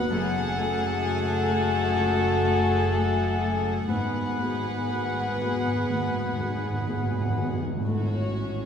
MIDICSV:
0, 0, Header, 1, 11, 480
1, 0, Start_track
1, 0, Tempo, 927357
1, 61, Time_signature, 4, 2, 24, 8
1, 1502, Tempo, 993377
1, 3422, Tempo, 950872
1, 4320, End_track
2, 0, Start_track
2, 0, Title_t, "Flute section"
2, 0, Program_c, 0, 73
2, 62, Note_on_c, 0, 80, 77
2, 1956, Note_off_c, 0, 80, 0
2, 1973, Note_on_c, 0, 78, 62
2, 3724, Note_off_c, 0, 78, 0
2, 4320, End_track
3, 0, Start_track
3, 0, Title_t, "Violin section"
3, 0, Program_c, 1, 48
3, 0, Note_on_c, 1, 78, 82
3, 1972, Note_off_c, 1, 78, 0
3, 1977, Note_on_c, 1, 78, 66
3, 3789, Note_off_c, 1, 78, 0
3, 3917, Note_on_c, 1, 73, 61
3, 4320, Note_off_c, 1, 73, 0
3, 4320, End_track
4, 0, Start_track
4, 0, Title_t, "Oboe"
4, 0, Program_c, 2, 68
4, 55, Note_on_c, 2, 69, 73
4, 1953, Note_off_c, 2, 69, 0
4, 1979, Note_on_c, 2, 71, 61
4, 3727, Note_off_c, 2, 71, 0
4, 4320, End_track
5, 0, Start_track
5, 0, Title_t, "Violin section"
5, 0, Program_c, 3, 48
5, 0, Note_on_c, 3, 71, 79
5, 67, Note_off_c, 3, 71, 0
5, 72, Note_on_c, 3, 68, 79
5, 1960, Note_off_c, 3, 68, 0
5, 1977, Note_on_c, 3, 68, 63
5, 3789, Note_off_c, 3, 68, 0
5, 3906, Note_on_c, 3, 66, 56
5, 4320, Note_off_c, 3, 66, 0
5, 4320, End_track
6, 0, Start_track
6, 0, Title_t, "Felt piano"
6, 0, Program_c, 4, 0
6, 0, Control_c, 4, 64, 127
6, 0, Note_on_c, 4, 39, 72
6, 0, Note_on_c, 4, 59, 57
6, 0, Note_on_c, 4, 66, 54
6, 0, Note_on_c, 4, 71, 58
6, 59, Note_on_c, 4, 42, 70
6, 70, Control_c, 4, 64, 0
6, 72, Note_off_c, 4, 59, 0
6, 73, Note_off_c, 4, 66, 0
6, 75, Note_off_c, 4, 39, 0
6, 75, Note_off_c, 4, 71, 0
6, 163, Control_c, 4, 64, 127
6, 287, Note_off_c, 4, 42, 0
6, 296, Note_on_c, 4, 57, 54
6, 299, Note_on_c, 4, 66, 53
6, 512, Note_off_c, 4, 57, 0
6, 513, Note_off_c, 4, 66, 0
6, 534, Note_on_c, 4, 57, 48
6, 535, Note_on_c, 4, 66, 49
6, 751, Note_off_c, 4, 57, 0
6, 752, Note_off_c, 4, 66, 0
6, 767, Note_on_c, 4, 57, 53
6, 772, Note_on_c, 4, 66, 50
6, 990, Note_off_c, 4, 57, 0
6, 993, Note_off_c, 4, 66, 0
6, 1012, Note_on_c, 4, 37, 56
6, 1249, Note_off_c, 4, 37, 0
6, 1257, Note_on_c, 4, 57, 47
6, 1263, Note_on_c, 4, 66, 47
6, 1481, Note_off_c, 4, 57, 0
6, 1484, Note_off_c, 4, 66, 0
6, 1500, Note_on_c, 4, 57, 49
6, 1504, Note_on_c, 4, 66, 46
6, 1714, Note_off_c, 4, 57, 0
6, 1716, Note_off_c, 4, 66, 0
6, 1737, Note_on_c, 4, 57, 44
6, 1956, Note_off_c, 4, 57, 0
6, 1977, Note_on_c, 4, 44, 58
6, 1983, Control_c, 4, 64, 0
6, 2079, Control_c, 4, 64, 127
6, 2214, Note_off_c, 4, 44, 0
6, 2221, Note_on_c, 4, 59, 46
6, 2224, Note_on_c, 4, 66, 43
6, 2225, Note_on_c, 4, 68, 51
6, 2446, Note_off_c, 4, 59, 0
6, 2448, Note_off_c, 4, 66, 0
6, 2448, Note_off_c, 4, 68, 0
6, 2465, Note_on_c, 4, 59, 40
6, 2465, Note_on_c, 4, 66, 40
6, 2468, Note_on_c, 4, 68, 44
6, 2688, Note_off_c, 4, 59, 0
6, 2688, Note_off_c, 4, 66, 0
6, 2690, Note_off_c, 4, 68, 0
6, 2715, Note_on_c, 4, 59, 41
6, 2717, Note_on_c, 4, 66, 43
6, 2717, Note_on_c, 4, 68, 48
6, 2931, Note_off_c, 4, 59, 0
6, 2932, Note_off_c, 4, 66, 0
6, 2932, Note_off_c, 4, 68, 0
6, 2952, Note_on_c, 4, 39, 49
6, 3180, Note_off_c, 4, 39, 0
6, 3190, Note_on_c, 4, 59, 43
6, 3193, Note_on_c, 4, 66, 43
6, 3193, Note_on_c, 4, 68, 46
6, 3405, Note_off_c, 4, 59, 0
6, 3407, Note_off_c, 4, 66, 0
6, 3407, Note_off_c, 4, 68, 0
6, 3425, Note_on_c, 4, 59, 43
6, 3429, Note_on_c, 4, 66, 41
6, 3430, Note_on_c, 4, 68, 48
6, 3651, Note_off_c, 4, 59, 0
6, 3653, Note_off_c, 4, 66, 0
6, 3654, Note_off_c, 4, 68, 0
6, 3673, Note_on_c, 4, 59, 42
6, 3674, Note_on_c, 4, 66, 42
6, 3676, Note_on_c, 4, 68, 45
6, 3893, Note_off_c, 4, 59, 0
6, 3893, Note_off_c, 4, 66, 0
6, 3894, Note_off_c, 4, 68, 0
6, 3914, Note_on_c, 4, 45, 55
6, 3919, Control_c, 4, 64, 0
6, 4002, Control_c, 4, 64, 127
6, 4320, Note_off_c, 4, 45, 0
6, 4320, End_track
7, 0, Start_track
7, 0, Title_t, "French horn section"
7, 0, Program_c, 5, 60
7, 60, Note_on_c, 5, 66, 87
7, 62, Note_on_c, 5, 57, 92
7, 1886, Note_off_c, 5, 57, 0
7, 1886, Note_off_c, 5, 66, 0
7, 1969, Note_on_c, 5, 59, 76
7, 1969, Note_on_c, 5, 66, 71
7, 3722, Note_off_c, 5, 59, 0
7, 3722, Note_off_c, 5, 66, 0
7, 4320, End_track
8, 0, Start_track
8, 0, Title_t, "Viola section"
8, 0, Program_c, 6, 48
8, 65, Note_on_c, 6, 57, 72
8, 1957, Note_off_c, 6, 57, 0
8, 1975, Note_on_c, 6, 59, 59
8, 3788, Note_off_c, 6, 59, 0
8, 3913, Note_on_c, 6, 57, 54
8, 4130, Note_off_c, 6, 57, 0
8, 4147, Note_on_c, 6, 61, 52
8, 4320, Note_off_c, 6, 61, 0
8, 4320, End_track
9, 0, Start_track
9, 0, Title_t, "Cello section"
9, 0, Program_c, 7, 48
9, 62, Note_on_c, 7, 42, 80
9, 1956, Note_off_c, 7, 42, 0
9, 1975, Note_on_c, 7, 44, 64
9, 3788, Note_off_c, 7, 44, 0
9, 3908, Note_on_c, 7, 45, 65
9, 4320, Note_off_c, 7, 45, 0
9, 4320, End_track
10, 0, Start_track
10, 0, Title_t, "Timpani"
10, 0, Program_c, 8, 47
10, 1981, Note_on_c, 8, 44, 37
10, 2012, Note_off_c, 8, 44, 0
10, 2018, Note_on_c, 8, 44, 36
10, 2053, Note_off_c, 8, 44, 0
10, 2059, Note_on_c, 8, 44, 37
10, 2092, Note_off_c, 8, 44, 0
10, 2098, Note_on_c, 8, 44, 38
10, 2133, Note_off_c, 8, 44, 0
10, 2141, Note_on_c, 8, 44, 37
10, 2167, Note_off_c, 8, 44, 0
10, 2173, Note_on_c, 8, 44, 37
10, 2210, Note_off_c, 8, 44, 0
10, 2218, Note_on_c, 8, 44, 36
10, 2247, Note_off_c, 8, 44, 0
10, 2293, Note_on_c, 8, 44, 42
10, 2323, Note_off_c, 8, 44, 0
10, 2328, Note_on_c, 8, 44, 40
10, 2363, Note_off_c, 8, 44, 0
10, 2369, Note_on_c, 8, 44, 38
10, 2404, Note_off_c, 8, 44, 0
10, 2410, Note_on_c, 8, 44, 43
10, 2448, Note_off_c, 8, 44, 0
10, 2454, Note_on_c, 8, 44, 42
10, 2490, Note_off_c, 8, 44, 0
10, 2497, Note_on_c, 8, 44, 44
10, 2526, Note_off_c, 8, 44, 0
10, 2532, Note_on_c, 8, 44, 46
10, 2567, Note_off_c, 8, 44, 0
10, 2572, Note_on_c, 8, 44, 44
10, 2609, Note_off_c, 8, 44, 0
10, 2614, Note_on_c, 8, 44, 47
10, 2647, Note_off_c, 8, 44, 0
10, 2653, Note_on_c, 8, 44, 46
10, 2683, Note_off_c, 8, 44, 0
10, 2689, Note_on_c, 8, 44, 50
10, 2725, Note_off_c, 8, 44, 0
10, 2731, Note_on_c, 8, 44, 53
10, 2766, Note_off_c, 8, 44, 0
10, 2775, Note_on_c, 8, 44, 53
10, 2804, Note_off_c, 8, 44, 0
10, 2810, Note_on_c, 8, 44, 58
10, 2841, Note_off_c, 8, 44, 0
10, 2847, Note_on_c, 8, 44, 59
10, 2880, Note_off_c, 8, 44, 0
10, 2885, Note_on_c, 8, 44, 59
10, 2921, Note_off_c, 8, 44, 0
10, 2928, Note_on_c, 8, 44, 59
10, 2957, Note_off_c, 8, 44, 0
10, 2963, Note_on_c, 8, 44, 61
10, 2996, Note_off_c, 8, 44, 0
10, 3002, Note_on_c, 8, 44, 60
10, 3037, Note_off_c, 8, 44, 0
10, 3044, Note_on_c, 8, 44, 61
10, 3075, Note_off_c, 8, 44, 0
10, 3080, Note_on_c, 8, 44, 61
10, 3115, Note_off_c, 8, 44, 0
10, 3120, Note_on_c, 8, 44, 63
10, 3153, Note_off_c, 8, 44, 0
10, 3159, Note_on_c, 8, 44, 63
10, 3193, Note_off_c, 8, 44, 0
10, 3198, Note_on_c, 8, 44, 66
10, 3227, Note_off_c, 8, 44, 0
10, 3233, Note_on_c, 8, 44, 69
10, 3266, Note_off_c, 8, 44, 0
10, 3272, Note_on_c, 8, 44, 65
10, 3303, Note_off_c, 8, 44, 0
10, 3309, Note_on_c, 8, 44, 73
10, 3345, Note_off_c, 8, 44, 0
10, 3350, Note_on_c, 8, 44, 74
10, 3379, Note_off_c, 8, 44, 0
10, 3385, Note_on_c, 8, 44, 76
10, 3415, Note_off_c, 8, 44, 0
10, 3421, Note_on_c, 8, 44, 77
10, 3460, Note_off_c, 8, 44, 0
10, 3469, Note_on_c, 8, 44, 78
10, 3500, Note_off_c, 8, 44, 0
10, 3506, Note_on_c, 8, 44, 77
10, 3537, Note_off_c, 8, 44, 0
10, 3543, Note_on_c, 8, 44, 86
10, 3580, Note_off_c, 8, 44, 0
10, 3587, Note_on_c, 8, 44, 85
10, 3622, Note_off_c, 8, 44, 0
10, 3628, Note_on_c, 8, 44, 85
10, 3660, Note_off_c, 8, 44, 0
10, 3666, Note_on_c, 8, 44, 87
10, 3698, Note_off_c, 8, 44, 0
10, 3704, Note_on_c, 8, 44, 84
10, 3738, Note_off_c, 8, 44, 0
10, 3744, Note_on_c, 8, 44, 84
10, 3782, Note_off_c, 8, 44, 0
10, 3788, Note_on_c, 8, 44, 85
10, 3817, Note_off_c, 8, 44, 0
10, 3823, Note_on_c, 8, 44, 96
10, 3854, Note_off_c, 8, 44, 0
10, 3860, Note_on_c, 8, 44, 94
10, 3897, Note_off_c, 8, 44, 0
10, 4320, End_track
11, 0, Start_track
11, 0, Title_t, "Double bass section"
11, 0, Program_c, 10, 48
11, 60, Note_on_c, 10, 30, 76
11, 1955, Note_off_c, 10, 30, 0
11, 1982, Note_on_c, 10, 32, 62
11, 3792, Note_off_c, 10, 32, 0
11, 3910, Note_on_c, 10, 33, 59
11, 4320, Note_off_c, 10, 33, 0
11, 4320, End_track
0, 0, End_of_file